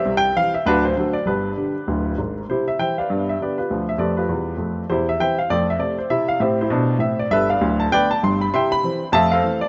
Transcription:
X:1
M:4/4
L:1/16
Q:"Swing" 1/4=198
K:C
V:1 name="Grand piano"
[Gce] g3 f2 e2 [D^FB]2 c2 [FAc]2 d2 | [DGB]12- [DGB]2 z2 | [EGc]2 e2 [ceg]2 [Bdf]4 e2 [GBd]2 [FGB]2- | [FGB]2 e2 [GBd]2 [FGB]8- [FGB]2 |
[EGc]2 e2 [ceg]2 f2 d2 e2 d2 c2 | e2 f2 [Gce]2 [EGc]6 e2 d2 | [ABe]2 [Bdf]4 a2 [Bdg]2 a2 c'2 b2 | [egc']2 b6 [efa]2 [Acf]4 d2 |]
V:2 name="Grand piano" clef=bass
[C,,C,]4 [E,G,C]4 [D,,,D,,]4 [D,^F,A,]4 | [G,,,G,,]4 [D,G,]4 [D,,,D,,]4 [_A,,,_A,,]4 | C,4 [E,G,]4 [G,,B,]4 [D,G,B,]4 | [D,,F,]4 [F,,A,]4 [E,,G,]4 [F,,A,]4 |
E,,4 [E,G,C]4 [F,,A,]4 [C,A,C]4 | [C,E]4 [A,,C]4 [B,,D]4 [A,,C]4 | [G,,,G,,]4 [D,,,D,,]4 [D,A,B,]4 [G,,,G,,]4 | [C,E]4 [E,G,C]4 [F,,A,]4 [E,A,C]4 |]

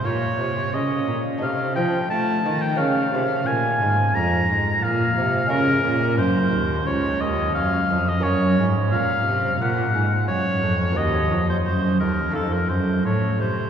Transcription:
X:1
M:4/4
L:1/16
Q:1/4=88
K:Bbdor
V:1 name="Oboe"
d4 e3 z f2 g2 =a3 g | f4 a4 b4 f4 | [K:Gblyd] B4 c4 d2 e2 f3 e | d3 z f4 g4 d4 |
e3 c c2 B2 =A B c2 d2 c2 |]
V:2 name="Lute"
[B,F]8 [=A,E]8 | [B,DF]16 | [K:Gblyd] [A,DF]16 | [B,DG]16 |
[B,CG]8 [=A,EF]8 |]
V:3 name="Lute" clef=bass
B,,2 C,2 D,2 B,,2 C,2 F,2 =A,2 E,2 | D,2 C,2 B,,2 A,,2 F,,2 A,,2 B,,2 C,2 | [K:Gblyd] D,2 B,,2 G,,2 E,,2 z2 E,,2 G,,2 F,,2 | G,,2 A,,2 B,,2 C,2 B,,2 A,,2 G,,2 F,,2 |
E,,2 F,,2 G,,2 E,,2 F,,2 G,,2 =A,,2 C,2 |]
V:4 name="Cello" clef=bass
B,,2 C,2 D,2 B,,2 C,2 F,2 =A,2 E,2 | D,2 C,2 B,,2 A,,2 F,,2 A,,2 B,,2 C,2 | [K:Gblyd] D,2 B,,2 G,,2 E,,2 D,,2 E,,2 G,,2 F,,2 | G,,2 A,,2 B,,2 C,2 B,,2 A,,2 G,,2 F,,2 |
E,,2 F,,2 G,,2 E,,2 F,,2 G,,2 =A,,2 C,2 |]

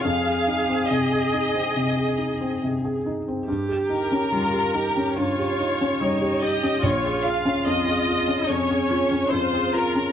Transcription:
X:1
M:4/4
L:1/16
Q:1/4=71
K:Bbdor
V:1 name="Violin section"
f4 e8 z4 | z2 B6 d6 e2 | d2 f2 e4 d4 c2 B2 |]
V:2 name="Viola"
A12- A2 z2 | G4 F2 G2 F4 E2 G2 | F8 D4 F4 |]
V:3 name="Felt piano"
[F,,C] A E C C, A E C C, A E C C, A E C | G,, G E D G, G E D G,, G E D G, G E D | B,,, A F D F,, A F D F,, A F D F,, A F D |]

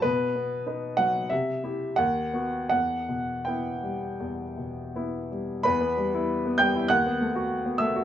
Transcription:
X:1
M:4/4
L:1/16
Q:1/4=94
K:Em
V:1 name="Upright piano"
B6 f2 e4 f4 | f4 g8- g2 z2 | [Bb]6 [gg']2 [ff']6 [ee']2 |]
V:2 name="Upright piano"
B,,2 B,2 [^DB]2 F,2 C,2 [EG]2 ^D,,2 [B,F]2 | E,,2 B,,2 [B,E]2 G,2 E,,2 B,,2 [B,E]2 G,2 | E,, B, G, E2 B, G, E ^D,, B, A, F2 B, A, F |]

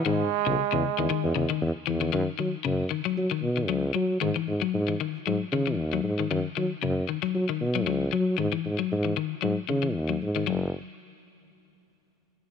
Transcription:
X:1
M:4/4
L:1/16
Q:"Swing 16ths" 1/4=115
K:G#phr
V:1 name="Trombone" clef=bass
G,12 z4 | z16 | z16 | z16 |
z16 | z16 |]
V:2 name="Clean electric guitar" clef=bass
D,2 z C,2 C,2 D, D,2 C, D,2 z E, D, | D,2 D,2 C,2 D, F,2 D,2 D, F,2 F,2 | D, E,2 F,2 E, D,2 F,2 D, E,2 F,2 D, | D,2 D,2 C,2 D, F,2 D,2 F, F,2 F,2 |
D, E,2 F,2 E, D,2 F,2 D, E,2 F,2 D, | F,2 z12 z2 |]
V:3 name="Tuba" clef=bass
G,,2 z B,,, z E,, z E,, z E,, E,, z E,, E,, E,,2 | F,, z F, z F,,2 z2 F, z B,,2 C,,2 F,2 | G,, z G,, z G,,2 z2 G,, z C,2 D,,2 G,,2 | F,, z F, z F,,2 z2 F, z B,,2 C,,2 F,2 |
G,, z G,, z G,,2 z2 G,, z C,2 D,,2 G,,2 | F,,,2 z12 z2 |]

